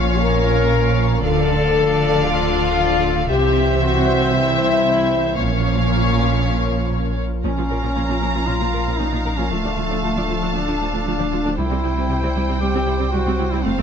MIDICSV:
0, 0, Header, 1, 11, 480
1, 0, Start_track
1, 0, Tempo, 517241
1, 1142, Time_signature, 4, 2, 24, 8
1, 12829, End_track
2, 0, Start_track
2, 0, Title_t, "Violin section"
2, 0, Program_c, 0, 48
2, 0, Note_on_c, 0, 77, 59
2, 1101, Note_off_c, 0, 77, 0
2, 1141, Note_on_c, 0, 74, 77
2, 3025, Note_off_c, 0, 74, 0
2, 3063, Note_on_c, 0, 76, 80
2, 4946, Note_off_c, 0, 76, 0
2, 4986, Note_on_c, 0, 73, 64
2, 6682, Note_off_c, 0, 73, 0
2, 6909, Note_on_c, 0, 77, 45
2, 6913, Note_on_c, 0, 82, 47
2, 8791, Note_off_c, 0, 82, 0
2, 8822, Note_on_c, 0, 81, 47
2, 10709, Note_off_c, 0, 77, 0
2, 10742, Note_off_c, 0, 81, 0
2, 10744, Note_on_c, 0, 79, 55
2, 10746, Note_on_c, 0, 72, 52
2, 12661, Note_on_c, 0, 77, 53
2, 12663, Note_off_c, 0, 79, 0
2, 12829, Note_off_c, 0, 72, 0
2, 12829, Note_off_c, 0, 77, 0
2, 12829, End_track
3, 0, Start_track
3, 0, Title_t, "Violin section"
3, 0, Program_c, 1, 48
3, 0, Note_on_c, 1, 77, 65
3, 1108, Note_off_c, 1, 77, 0
3, 1150, Note_on_c, 1, 77, 84
3, 3029, Note_off_c, 1, 77, 0
3, 3058, Note_on_c, 1, 76, 82
3, 4943, Note_off_c, 1, 76, 0
3, 4975, Note_on_c, 1, 77, 70
3, 6676, Note_off_c, 1, 77, 0
3, 12829, End_track
4, 0, Start_track
4, 0, Title_t, "French horn section"
4, 0, Program_c, 2, 60
4, 0, Note_on_c, 2, 65, 98
4, 181, Note_off_c, 2, 65, 0
4, 187, Note_on_c, 2, 70, 124
4, 1145, Note_off_c, 2, 70, 0
4, 1146, Note_on_c, 2, 69, 127
4, 2085, Note_off_c, 2, 69, 0
4, 2097, Note_on_c, 2, 65, 127
4, 3058, Note_on_c, 2, 67, 124
4, 3059, Note_off_c, 2, 65, 0
4, 3530, Note_off_c, 2, 67, 0
4, 3538, Note_on_c, 2, 66, 109
4, 4020, Note_off_c, 2, 66, 0
4, 4020, Note_on_c, 2, 64, 114
4, 4981, Note_off_c, 2, 64, 0
4, 4982, Note_on_c, 2, 58, 96
4, 6629, Note_off_c, 2, 58, 0
4, 6903, Note_on_c, 2, 61, 68
4, 7825, Note_off_c, 2, 61, 0
4, 7862, Note_on_c, 2, 65, 60
4, 8335, Note_on_c, 2, 63, 57
4, 8342, Note_off_c, 2, 65, 0
4, 8699, Note_off_c, 2, 63, 0
4, 8699, Note_on_c, 2, 61, 52
4, 8818, Note_off_c, 2, 61, 0
4, 8824, Note_on_c, 2, 57, 66
4, 9783, Note_off_c, 2, 57, 0
4, 9788, Note_on_c, 2, 62, 63
4, 10726, Note_off_c, 2, 62, 0
4, 10744, Note_on_c, 2, 64, 72
4, 11703, Note_off_c, 2, 64, 0
4, 11709, Note_on_c, 2, 67, 67
4, 12176, Note_off_c, 2, 67, 0
4, 12184, Note_on_c, 2, 54, 71
4, 12536, Note_off_c, 2, 54, 0
4, 12540, Note_on_c, 2, 64, 61
4, 12661, Note_off_c, 2, 64, 0
4, 12664, Note_on_c, 2, 60, 76
4, 12829, Note_off_c, 2, 60, 0
4, 12829, End_track
5, 0, Start_track
5, 0, Title_t, "Duduk"
5, 0, Program_c, 3, 69
5, 6894, Note_on_c, 3, 61, 77
5, 7859, Note_on_c, 3, 65, 67
5, 7873, Note_off_c, 3, 61, 0
5, 8343, Note_on_c, 3, 63, 67
5, 8357, Note_off_c, 3, 65, 0
5, 8703, Note_on_c, 3, 61, 59
5, 8717, Note_off_c, 3, 63, 0
5, 8818, Note_off_c, 3, 61, 0
5, 8824, Note_on_c, 3, 57, 69
5, 9783, Note_on_c, 3, 62, 70
5, 9797, Note_off_c, 3, 57, 0
5, 10736, Note_off_c, 3, 62, 0
5, 10741, Note_on_c, 3, 64, 83
5, 11683, Note_off_c, 3, 64, 0
5, 11697, Note_on_c, 3, 67, 80
5, 12170, Note_off_c, 3, 67, 0
5, 12175, Note_on_c, 3, 66, 75
5, 12545, Note_on_c, 3, 64, 72
5, 12559, Note_off_c, 3, 66, 0
5, 12652, Note_on_c, 3, 60, 87
5, 12666, Note_off_c, 3, 64, 0
5, 12829, Note_off_c, 3, 60, 0
5, 12829, End_track
6, 0, Start_track
6, 0, Title_t, "Analog synth pad"
6, 0, Program_c, 4, 89
6, 0, Note_on_c, 4, 53, 70
6, 0, Note_on_c, 4, 61, 74
6, 0, Note_on_c, 4, 65, 73
6, 0, Note_on_c, 4, 77, 73
6, 1142, Note_off_c, 4, 61, 0
6, 1142, Note_on_c, 4, 62, 77
6, 3062, Note_off_c, 4, 62, 0
6, 3064, Note_off_c, 4, 65, 0
6, 3066, Note_off_c, 4, 53, 0
6, 3066, Note_off_c, 4, 77, 0
6, 3067, Note_on_c, 4, 72, 80
6, 3072, Note_on_c, 4, 60, 80
6, 3076, Note_on_c, 4, 55, 80
6, 3077, Note_on_c, 4, 52, 80
6, 4968, Note_on_c, 4, 70, 72
6, 4973, Note_on_c, 4, 61, 78
6, 4975, Note_on_c, 4, 53, 78
6, 4976, Note_on_c, 4, 65, 76
6, 4984, Note_off_c, 4, 72, 0
6, 4987, Note_off_c, 4, 60, 0
6, 4989, Note_off_c, 4, 55, 0
6, 4990, Note_off_c, 4, 52, 0
6, 6893, Note_off_c, 4, 53, 0
6, 6895, Note_off_c, 4, 65, 0
6, 6895, Note_off_c, 4, 70, 0
6, 6898, Note_off_c, 4, 61, 0
6, 6904, Note_on_c, 4, 53, 63
6, 6906, Note_on_c, 4, 65, 57
6, 6907, Note_on_c, 4, 61, 65
6, 6908, Note_on_c, 4, 70, 60
6, 8788, Note_off_c, 4, 61, 0
6, 8788, Note_off_c, 4, 70, 0
6, 8827, Note_on_c, 4, 69, 63
6, 8828, Note_on_c, 4, 62, 58
6, 10706, Note_off_c, 4, 53, 0
6, 10707, Note_off_c, 4, 65, 0
6, 10744, Note_off_c, 4, 69, 0
6, 10745, Note_off_c, 4, 62, 0
6, 10748, Note_on_c, 4, 60, 62
6, 10750, Note_on_c, 4, 55, 66
6, 10751, Note_on_c, 4, 64, 60
6, 10751, Note_on_c, 4, 72, 64
6, 12663, Note_on_c, 4, 53, 65
6, 12666, Note_off_c, 4, 55, 0
6, 12666, Note_on_c, 4, 69, 66
6, 12667, Note_off_c, 4, 64, 0
6, 12667, Note_off_c, 4, 72, 0
6, 12670, Note_on_c, 4, 65, 61
6, 12829, Note_off_c, 4, 53, 0
6, 12829, Note_off_c, 4, 60, 0
6, 12829, Note_off_c, 4, 65, 0
6, 12829, Note_off_c, 4, 69, 0
6, 12829, End_track
7, 0, Start_track
7, 0, Title_t, "Trombone section"
7, 0, Program_c, 5, 61
7, 0, Note_on_c, 5, 53, 67
7, 0, Note_on_c, 5, 61, 79
7, 1103, Note_off_c, 5, 53, 0
7, 1111, Note_off_c, 5, 61, 0
7, 1150, Note_on_c, 5, 53, 84
7, 1151, Note_on_c, 5, 62, 89
7, 2897, Note_off_c, 5, 53, 0
7, 2897, Note_off_c, 5, 62, 0
7, 3055, Note_on_c, 5, 52, 80
7, 3055, Note_on_c, 5, 60, 88
7, 4942, Note_off_c, 5, 52, 0
7, 4942, Note_off_c, 5, 60, 0
7, 4978, Note_on_c, 5, 53, 72
7, 4979, Note_on_c, 5, 61, 73
7, 6627, Note_off_c, 5, 53, 0
7, 6627, Note_off_c, 5, 61, 0
7, 12829, End_track
8, 0, Start_track
8, 0, Title_t, "Viola section"
8, 0, Program_c, 6, 48
8, 0, Note_on_c, 6, 73, 66
8, 1105, Note_off_c, 6, 73, 0
8, 1143, Note_on_c, 6, 69, 72
8, 3026, Note_off_c, 6, 69, 0
8, 3056, Note_on_c, 6, 72, 79
8, 4942, Note_off_c, 6, 72, 0
8, 4982, Note_on_c, 6, 73, 68
8, 6679, Note_off_c, 6, 73, 0
8, 6902, Note_on_c, 6, 53, 54
8, 6902, Note_on_c, 6, 61, 55
8, 6950, Note_off_c, 6, 53, 0
8, 6950, Note_off_c, 6, 61, 0
8, 7028, Note_on_c, 6, 65, 45
8, 7029, Note_on_c, 6, 53, 41
8, 7075, Note_off_c, 6, 65, 0
8, 7076, Note_off_c, 6, 53, 0
8, 7145, Note_on_c, 6, 53, 42
8, 7147, Note_on_c, 6, 70, 42
8, 7193, Note_off_c, 6, 53, 0
8, 7194, Note_off_c, 6, 70, 0
8, 7260, Note_on_c, 6, 53, 40
8, 7260, Note_on_c, 6, 65, 42
8, 7308, Note_off_c, 6, 53, 0
8, 7309, Note_off_c, 6, 65, 0
8, 7386, Note_on_c, 6, 61, 57
8, 7387, Note_on_c, 6, 53, 64
8, 7433, Note_off_c, 6, 61, 0
8, 7434, Note_off_c, 6, 53, 0
8, 7507, Note_on_c, 6, 53, 39
8, 7507, Note_on_c, 6, 65, 40
8, 7554, Note_off_c, 6, 53, 0
8, 7554, Note_off_c, 6, 65, 0
8, 7626, Note_on_c, 6, 53, 40
8, 7626, Note_on_c, 6, 70, 42
8, 7673, Note_off_c, 6, 53, 0
8, 7674, Note_off_c, 6, 70, 0
8, 7744, Note_on_c, 6, 53, 43
8, 7745, Note_on_c, 6, 65, 43
8, 7791, Note_off_c, 6, 53, 0
8, 7792, Note_off_c, 6, 65, 0
8, 7860, Note_on_c, 6, 53, 52
8, 7861, Note_on_c, 6, 61, 54
8, 7909, Note_off_c, 6, 53, 0
8, 7909, Note_off_c, 6, 61, 0
8, 7982, Note_on_c, 6, 65, 40
8, 7984, Note_on_c, 6, 53, 45
8, 8030, Note_off_c, 6, 65, 0
8, 8032, Note_off_c, 6, 53, 0
8, 8097, Note_on_c, 6, 53, 45
8, 8098, Note_on_c, 6, 70, 41
8, 8146, Note_off_c, 6, 53, 0
8, 8147, Note_off_c, 6, 70, 0
8, 8225, Note_on_c, 6, 53, 40
8, 8225, Note_on_c, 6, 65, 42
8, 8273, Note_off_c, 6, 53, 0
8, 8273, Note_off_c, 6, 65, 0
8, 8337, Note_on_c, 6, 61, 49
8, 8339, Note_on_c, 6, 53, 54
8, 8386, Note_off_c, 6, 61, 0
8, 8388, Note_off_c, 6, 53, 0
8, 8460, Note_on_c, 6, 65, 43
8, 8461, Note_on_c, 6, 53, 46
8, 8508, Note_off_c, 6, 65, 0
8, 8509, Note_off_c, 6, 53, 0
8, 8584, Note_on_c, 6, 53, 44
8, 8584, Note_on_c, 6, 70, 50
8, 8632, Note_off_c, 6, 53, 0
8, 8632, Note_off_c, 6, 70, 0
8, 8701, Note_on_c, 6, 65, 42
8, 8704, Note_on_c, 6, 53, 48
8, 8749, Note_off_c, 6, 65, 0
8, 8752, Note_off_c, 6, 53, 0
8, 8823, Note_on_c, 6, 53, 47
8, 8824, Note_on_c, 6, 57, 54
8, 8871, Note_off_c, 6, 53, 0
8, 8871, Note_off_c, 6, 57, 0
8, 8947, Note_on_c, 6, 53, 44
8, 8947, Note_on_c, 6, 62, 37
8, 8994, Note_off_c, 6, 53, 0
8, 8994, Note_off_c, 6, 62, 0
8, 9065, Note_on_c, 6, 53, 39
8, 9066, Note_on_c, 6, 65, 44
8, 9113, Note_off_c, 6, 53, 0
8, 9113, Note_off_c, 6, 65, 0
8, 9186, Note_on_c, 6, 62, 39
8, 9188, Note_on_c, 6, 53, 41
8, 9233, Note_off_c, 6, 62, 0
8, 9235, Note_off_c, 6, 53, 0
8, 9306, Note_on_c, 6, 53, 57
8, 9306, Note_on_c, 6, 57, 52
8, 9353, Note_off_c, 6, 53, 0
8, 9353, Note_off_c, 6, 57, 0
8, 9433, Note_on_c, 6, 53, 47
8, 9435, Note_on_c, 6, 62, 47
8, 9479, Note_off_c, 6, 53, 0
8, 9481, Note_off_c, 6, 62, 0
8, 9547, Note_on_c, 6, 53, 41
8, 9547, Note_on_c, 6, 65, 45
8, 9594, Note_off_c, 6, 53, 0
8, 9594, Note_off_c, 6, 65, 0
8, 9669, Note_on_c, 6, 53, 45
8, 9670, Note_on_c, 6, 62, 38
8, 9716, Note_off_c, 6, 53, 0
8, 9717, Note_off_c, 6, 62, 0
8, 9782, Note_on_c, 6, 53, 57
8, 9785, Note_on_c, 6, 57, 50
8, 9830, Note_off_c, 6, 53, 0
8, 9833, Note_off_c, 6, 57, 0
8, 9903, Note_on_c, 6, 53, 45
8, 9904, Note_on_c, 6, 62, 42
8, 9951, Note_off_c, 6, 53, 0
8, 9951, Note_off_c, 6, 62, 0
8, 10022, Note_on_c, 6, 65, 42
8, 10023, Note_on_c, 6, 53, 46
8, 10070, Note_off_c, 6, 65, 0
8, 10071, Note_off_c, 6, 53, 0
8, 10145, Note_on_c, 6, 62, 45
8, 10146, Note_on_c, 6, 53, 45
8, 10193, Note_off_c, 6, 53, 0
8, 10193, Note_off_c, 6, 62, 0
8, 10264, Note_on_c, 6, 57, 57
8, 10266, Note_on_c, 6, 53, 55
8, 10312, Note_off_c, 6, 57, 0
8, 10313, Note_off_c, 6, 53, 0
8, 10382, Note_on_c, 6, 62, 45
8, 10386, Note_on_c, 6, 53, 47
8, 10430, Note_off_c, 6, 62, 0
8, 10433, Note_off_c, 6, 53, 0
8, 10502, Note_on_c, 6, 65, 50
8, 10503, Note_on_c, 6, 53, 52
8, 10550, Note_off_c, 6, 65, 0
8, 10551, Note_off_c, 6, 53, 0
8, 10628, Note_on_c, 6, 53, 48
8, 10629, Note_on_c, 6, 62, 49
8, 10675, Note_off_c, 6, 53, 0
8, 10676, Note_off_c, 6, 62, 0
8, 10746, Note_on_c, 6, 55, 60
8, 10749, Note_off_c, 6, 55, 0
8, 10749, Note_on_c, 6, 55, 53
8, 10796, Note_off_c, 6, 55, 0
8, 10862, Note_on_c, 6, 55, 46
8, 10862, Note_on_c, 6, 60, 44
8, 10910, Note_off_c, 6, 55, 0
8, 10910, Note_off_c, 6, 60, 0
8, 10981, Note_on_c, 6, 55, 42
8, 10982, Note_on_c, 6, 64, 43
8, 11029, Note_off_c, 6, 55, 0
8, 11030, Note_off_c, 6, 64, 0
8, 11104, Note_on_c, 6, 55, 44
8, 11104, Note_on_c, 6, 60, 39
8, 11151, Note_off_c, 6, 60, 0
8, 11152, Note_off_c, 6, 55, 0
8, 11223, Note_on_c, 6, 55, 63
8, 11226, Note_off_c, 6, 55, 0
8, 11226, Note_on_c, 6, 55, 57
8, 11273, Note_off_c, 6, 55, 0
8, 11346, Note_on_c, 6, 55, 49
8, 11349, Note_on_c, 6, 60, 48
8, 11393, Note_off_c, 6, 55, 0
8, 11396, Note_off_c, 6, 60, 0
8, 11467, Note_on_c, 6, 55, 45
8, 11467, Note_on_c, 6, 64, 42
8, 11514, Note_off_c, 6, 55, 0
8, 11514, Note_off_c, 6, 64, 0
8, 11582, Note_on_c, 6, 55, 49
8, 11585, Note_on_c, 6, 60, 47
8, 11630, Note_off_c, 6, 55, 0
8, 11633, Note_off_c, 6, 60, 0
8, 11707, Note_on_c, 6, 55, 66
8, 11754, Note_off_c, 6, 55, 0
8, 11828, Note_on_c, 6, 55, 47
8, 11828, Note_on_c, 6, 60, 55
8, 11875, Note_off_c, 6, 55, 0
8, 11875, Note_off_c, 6, 60, 0
8, 11940, Note_on_c, 6, 64, 46
8, 11941, Note_on_c, 6, 55, 46
8, 11988, Note_off_c, 6, 64, 0
8, 11989, Note_off_c, 6, 55, 0
8, 12056, Note_on_c, 6, 60, 51
8, 12057, Note_on_c, 6, 55, 52
8, 12106, Note_off_c, 6, 55, 0
8, 12106, Note_off_c, 6, 60, 0
8, 12184, Note_on_c, 6, 55, 60
8, 12185, Note_off_c, 6, 55, 0
8, 12185, Note_on_c, 6, 55, 59
8, 12233, Note_off_c, 6, 55, 0
8, 12307, Note_on_c, 6, 55, 53
8, 12308, Note_on_c, 6, 60, 57
8, 12354, Note_off_c, 6, 55, 0
8, 12355, Note_off_c, 6, 60, 0
8, 12423, Note_on_c, 6, 55, 50
8, 12424, Note_on_c, 6, 64, 56
8, 12471, Note_off_c, 6, 55, 0
8, 12472, Note_off_c, 6, 64, 0
8, 12549, Note_on_c, 6, 55, 53
8, 12549, Note_on_c, 6, 60, 53
8, 12596, Note_off_c, 6, 55, 0
8, 12596, Note_off_c, 6, 60, 0
8, 12661, Note_on_c, 6, 57, 71
8, 12663, Note_off_c, 6, 57, 0
8, 12663, Note_on_c, 6, 57, 68
8, 12711, Note_off_c, 6, 57, 0
8, 12783, Note_on_c, 6, 57, 48
8, 12785, Note_on_c, 6, 60, 46
8, 12829, Note_off_c, 6, 57, 0
8, 12829, Note_off_c, 6, 60, 0
8, 12829, End_track
9, 0, Start_track
9, 0, Title_t, "Cello section"
9, 0, Program_c, 7, 48
9, 0, Note_on_c, 7, 46, 72
9, 1105, Note_off_c, 7, 46, 0
9, 1148, Note_on_c, 7, 50, 81
9, 3028, Note_off_c, 7, 50, 0
9, 3061, Note_on_c, 7, 48, 81
9, 4945, Note_off_c, 7, 48, 0
9, 4985, Note_on_c, 7, 46, 68
9, 6718, Note_off_c, 7, 46, 0
9, 6909, Note_on_c, 7, 46, 56
9, 6955, Note_off_c, 7, 46, 0
9, 7029, Note_on_c, 7, 46, 40
9, 7075, Note_off_c, 7, 46, 0
9, 7149, Note_on_c, 7, 46, 43
9, 7196, Note_off_c, 7, 46, 0
9, 7269, Note_on_c, 7, 46, 39
9, 7316, Note_off_c, 7, 46, 0
9, 7384, Note_on_c, 7, 46, 55
9, 7432, Note_off_c, 7, 46, 0
9, 7505, Note_on_c, 7, 46, 43
9, 7553, Note_off_c, 7, 46, 0
9, 7621, Note_on_c, 7, 46, 37
9, 7669, Note_off_c, 7, 46, 0
9, 7744, Note_on_c, 7, 46, 43
9, 7791, Note_off_c, 7, 46, 0
9, 7861, Note_on_c, 7, 46, 60
9, 7909, Note_off_c, 7, 46, 0
9, 7985, Note_on_c, 7, 46, 39
9, 8032, Note_off_c, 7, 46, 0
9, 8105, Note_on_c, 7, 46, 41
9, 8152, Note_off_c, 7, 46, 0
9, 8222, Note_on_c, 7, 46, 42
9, 8270, Note_off_c, 7, 46, 0
9, 8346, Note_on_c, 7, 46, 57
9, 8393, Note_off_c, 7, 46, 0
9, 8467, Note_on_c, 7, 46, 38
9, 8514, Note_off_c, 7, 46, 0
9, 8585, Note_on_c, 7, 46, 40
9, 8633, Note_off_c, 7, 46, 0
9, 8705, Note_on_c, 7, 46, 44
9, 8753, Note_off_c, 7, 46, 0
9, 8822, Note_on_c, 7, 38, 60
9, 8870, Note_off_c, 7, 38, 0
9, 8945, Note_on_c, 7, 38, 43
9, 8992, Note_off_c, 7, 38, 0
9, 9062, Note_on_c, 7, 38, 42
9, 9110, Note_off_c, 7, 38, 0
9, 9184, Note_on_c, 7, 38, 43
9, 9232, Note_off_c, 7, 38, 0
9, 9304, Note_on_c, 7, 38, 60
9, 9351, Note_off_c, 7, 38, 0
9, 9424, Note_on_c, 7, 38, 45
9, 9472, Note_off_c, 7, 38, 0
9, 9540, Note_on_c, 7, 38, 41
9, 9589, Note_off_c, 7, 38, 0
9, 9666, Note_on_c, 7, 38, 41
9, 9713, Note_off_c, 7, 38, 0
9, 9787, Note_on_c, 7, 38, 61
9, 9834, Note_off_c, 7, 38, 0
9, 9908, Note_on_c, 7, 38, 40
9, 9955, Note_off_c, 7, 38, 0
9, 10024, Note_on_c, 7, 38, 44
9, 10072, Note_off_c, 7, 38, 0
9, 10144, Note_on_c, 7, 38, 43
9, 10192, Note_off_c, 7, 38, 0
9, 10265, Note_on_c, 7, 38, 64
9, 10313, Note_off_c, 7, 38, 0
9, 10387, Note_on_c, 7, 38, 44
9, 10434, Note_off_c, 7, 38, 0
9, 10505, Note_on_c, 7, 38, 44
9, 10553, Note_off_c, 7, 38, 0
9, 10621, Note_on_c, 7, 38, 44
9, 10670, Note_off_c, 7, 38, 0
9, 10742, Note_on_c, 7, 36, 64
9, 10790, Note_off_c, 7, 36, 0
9, 10865, Note_on_c, 7, 36, 44
9, 10913, Note_off_c, 7, 36, 0
9, 10991, Note_on_c, 7, 36, 45
9, 11037, Note_off_c, 7, 36, 0
9, 11105, Note_on_c, 7, 36, 48
9, 11153, Note_off_c, 7, 36, 0
9, 11222, Note_on_c, 7, 36, 61
9, 11270, Note_off_c, 7, 36, 0
9, 11349, Note_on_c, 7, 36, 50
9, 11395, Note_off_c, 7, 36, 0
9, 11473, Note_on_c, 7, 36, 44
9, 11519, Note_off_c, 7, 36, 0
9, 11584, Note_on_c, 7, 36, 46
9, 11631, Note_off_c, 7, 36, 0
9, 11704, Note_on_c, 7, 36, 67
9, 11752, Note_off_c, 7, 36, 0
9, 11831, Note_on_c, 7, 36, 47
9, 11877, Note_off_c, 7, 36, 0
9, 11946, Note_on_c, 7, 36, 46
9, 11993, Note_off_c, 7, 36, 0
9, 12073, Note_on_c, 7, 36, 50
9, 12119, Note_off_c, 7, 36, 0
9, 12191, Note_on_c, 7, 36, 61
9, 12237, Note_off_c, 7, 36, 0
9, 12313, Note_on_c, 7, 36, 48
9, 12359, Note_off_c, 7, 36, 0
9, 12431, Note_on_c, 7, 36, 49
9, 12477, Note_off_c, 7, 36, 0
9, 12549, Note_on_c, 7, 36, 49
9, 12596, Note_off_c, 7, 36, 0
9, 12665, Note_on_c, 7, 41, 70
9, 12713, Note_off_c, 7, 41, 0
9, 12790, Note_on_c, 7, 41, 48
9, 12829, Note_off_c, 7, 41, 0
9, 12829, End_track
10, 0, Start_track
10, 0, Title_t, "Double bass section"
10, 0, Program_c, 8, 48
10, 0, Note_on_c, 8, 34, 72
10, 1105, Note_off_c, 8, 34, 0
10, 1142, Note_on_c, 8, 38, 78
10, 3025, Note_off_c, 8, 38, 0
10, 3061, Note_on_c, 8, 36, 83
10, 4944, Note_off_c, 8, 36, 0
10, 4976, Note_on_c, 8, 34, 69
10, 6714, Note_off_c, 8, 34, 0
10, 12829, End_track
11, 0, Start_track
11, 0, Title_t, "Sub bass"
11, 0, Program_c, 10, 38
11, 0, Note_on_c, 10, 34, 72
11, 1144, Note_on_c, 10, 26, 71
11, 1158, Note_off_c, 10, 34, 0
11, 3064, Note_on_c, 10, 36, 77
11, 3078, Note_off_c, 10, 26, 0
11, 4981, Note_on_c, 10, 34, 69
11, 4995, Note_off_c, 10, 36, 0
11, 6900, Note_off_c, 10, 34, 0
11, 6905, Note_on_c, 10, 34, 55
11, 8827, Note_on_c, 10, 26, 58
11, 8841, Note_off_c, 10, 34, 0
11, 10747, Note_on_c, 10, 36, 58
11, 10761, Note_off_c, 10, 26, 0
11, 12665, Note_on_c, 10, 29, 61
11, 12678, Note_off_c, 10, 36, 0
11, 12829, Note_off_c, 10, 29, 0
11, 12829, End_track
0, 0, End_of_file